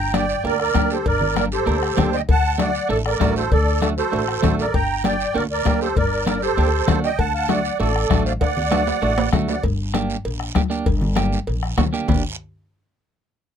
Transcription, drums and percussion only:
0.14 bombo rim medium
0.14 cowbell medium
0.14 high conga medium
0.14 short guiro medium
0.29 short guiro medium
0.45 cowbell medium
0.45 high conga soft
0.45 long guiro medium
0.60 bombo rim medium
0.75 bombo low medium
0.75 bombo rim medium
0.75 cowbell medium
0.75 high conga medium
0.75 low timbale medium
0.75 short guiro medium
0.90 short guiro medium
1.06 bombo low medium
1.06 cowbell medium
1.06 high conga soft
1.06 long guiro medium
1.21 low conga medium
1.36 bombo rim medium
1.36 cowbell medium
1.36 high conga medium
1.36 short guiro medium
1.52 short guiro medium
1.67 cowbell medium
1.67 high conga soft
1.67 long guiro medium
1.83 bombo rim medium
1.98 bombo low medium
1.98 bombo rim medium
1.98 cowbell medium
1.98 high conga medium
1.98 low conga medium
1.98 low timbale medium
1.98 short guiro medium
2.13 short guiro medium
2.29 bombo low medium
2.29 cowbell medium
2.29 high conga soft
2.29 long guiro medium
2.59 bombo rim medium
2.59 cowbell medium
2.59 high conga medium
2.59 short guiro medium
2.75 short guiro medium
2.90 cowbell medium
2.90 high conga soft
2.90 long guiro medium
3.06 bombo rim medium
3.21 bombo low medium
3.21 bombo rim medium
3.21 cowbell medium
3.21 high conga medium
3.21 low timbale medium
3.21 short guiro medium
3.36 short guiro medium
3.52 bombo low medium
3.52 cowbell medium
3.52 high conga soft
3.52 long guiro medium
3.82 bombo rim medium
3.82 cowbell medium
3.82 high conga medium
3.82 short guiro medium
3.98 short guiro medium
4.12 cowbell medium
4.12 high conga soft
4.12 long guiro medium
4.28 bombo rim medium
4.43 bombo low medium
4.43 bombo rim medium
4.43 cowbell medium
4.43 high conga medium
4.43 low conga medium
4.43 short guiro medium
4.59 short guiro medium
4.74 bombo low medium
4.74 cowbell loud
4.74 high conga soft
4.74 long guiro medium
5.04 bombo rim medium
5.04 cowbell medium
5.04 high conga medium
5.04 short guiro medium
5.20 short guiro medium
5.35 cowbell medium
5.35 high conga soft
5.35 long guiro medium
5.65 bombo low medium
5.65 bombo rim medium
5.65 cowbell medium
5.65 high conga medium
5.65 low timbale medium
5.65 short guiro medium
5.81 short guiro medium
5.96 bombo low medium
5.96 cowbell loud
5.96 high conga soft
5.96 long guiro medium
6.27 bombo rim medium
6.27 cowbell medium
6.27 high conga medium
6.27 short guiro medium
6.42 short guiro medium
6.58 cowbell medium
6.58 high conga soft
6.58 long guiro medium
6.88 bombo low medium
6.88 bombo rim medium
6.88 cowbell medium
6.88 high conga medium
6.88 low conga medium
6.88 low timbale medium
6.88 short guiro medium
7.04 short guiro medium
7.19 bombo low medium
7.19 cowbell medium
7.19 high conga soft
7.19 long guiro medium
7.49 bombo rim medium
7.49 cowbell medium
7.49 high conga loud
7.49 short guiro medium
7.65 short guiro medium
7.80 cowbell medium
7.80 high conga soft
7.80 long guiro medium
7.96 bombo rim medium
8.11 bombo low medium
8.11 bombo rim medium
8.11 cowbell medium
8.11 high conga medium
8.11 short guiro medium
8.26 short guiro medium
8.41 bombo low medium
8.41 cowbell medium
8.41 high conga soft
8.41 high timbale medium
8.41 long guiro medium
8.57 low conga medium
8.72 bombo rim medium
8.72 cowbell medium
8.72 high conga medium
8.72 high timbale medium
8.72 short guiro medium
8.87 low timbale medium
8.87 short guiro medium
9.02 cowbell medium
9.02 high conga soft
9.02 long guiro medium
9.18 bombo rim medium
9.18 low timbale medium
9.33 bombo low medium
9.33 bombo rim medium
9.33 cowbell medium
9.33 high conga medium
9.33 low conga medium
9.33 short guiro medium
9.48 low timbale medium
9.48 short guiro medium
9.63 bombo low medium
9.63 cowbell medium
9.63 high conga soft
9.63 long guiro medium
9.94 bombo rim medium
9.94 cowbell medium
9.94 high conga medium
9.94 short guiro medium
10.10 short guiro medium
10.25 cowbell medium
10.25 high conga soft
10.25 long guiro medium
10.40 bombo rim medium
10.55 bombo low medium
10.55 bombo rim medium
10.55 cowbell medium
10.55 high conga medium
10.55 short guiro medium
10.71 short guiro medium
10.86 bombo low medium
10.86 cowbell loud
10.86 long guiro medium
11.01 low conga medium
11.16 bombo rim medium
11.16 cowbell medium
11.16 high conga medium
11.16 short guiro medium
11.33 short guiro medium
11.47 cowbell medium
11.47 high conga soft
11.47 long guiro medium
11.63 bombo rim medium
11.78 bombo low medium
11.78 bombo rim loud
11.78 cowbell medium
11.78 high conga medium
11.78 low conga medium
11.78 low timbale medium
11.78 short guiro medium
11.94 short guiro medium
12.08 bombo low loud
12.08 low conga medium
12.08 low timbale medium
12.08 long guiro medium

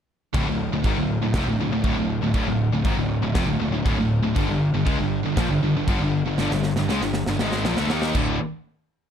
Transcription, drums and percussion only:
0.34 kick loud
0.34 crash medium
0.84 kick loud
0.84 crash medium
1.34 kick loud
1.34 snare loud
1.34 crash medium
1.84 kick loud
1.84 crash medium
2.34 kick loud
2.34 crash medium
2.85 kick loud
2.85 crash medium
3.35 kick loud
3.35 snare loud
3.35 crash medium
3.86 kick loud
3.86 crash medium
4.36 kick loud
4.36 crash medium
4.87 kick loud
4.87 crash medium
5.37 kick loud
5.37 snare loud
5.37 crash medium
5.88 kick loud
5.88 crash medium
6.38 snare medium
6.51 snare medium
6.63 snare medium
6.76 snare medium
6.89 snare medium
7.02 snare medium
7.14 snare medium
7.26 snare medium
7.39 snare medium
7.52 snare medium
7.65 snare loud
7.77 snare medium
7.90 snare loud
8.02 snare medium
8.15 kick loud
8.15 crash medium

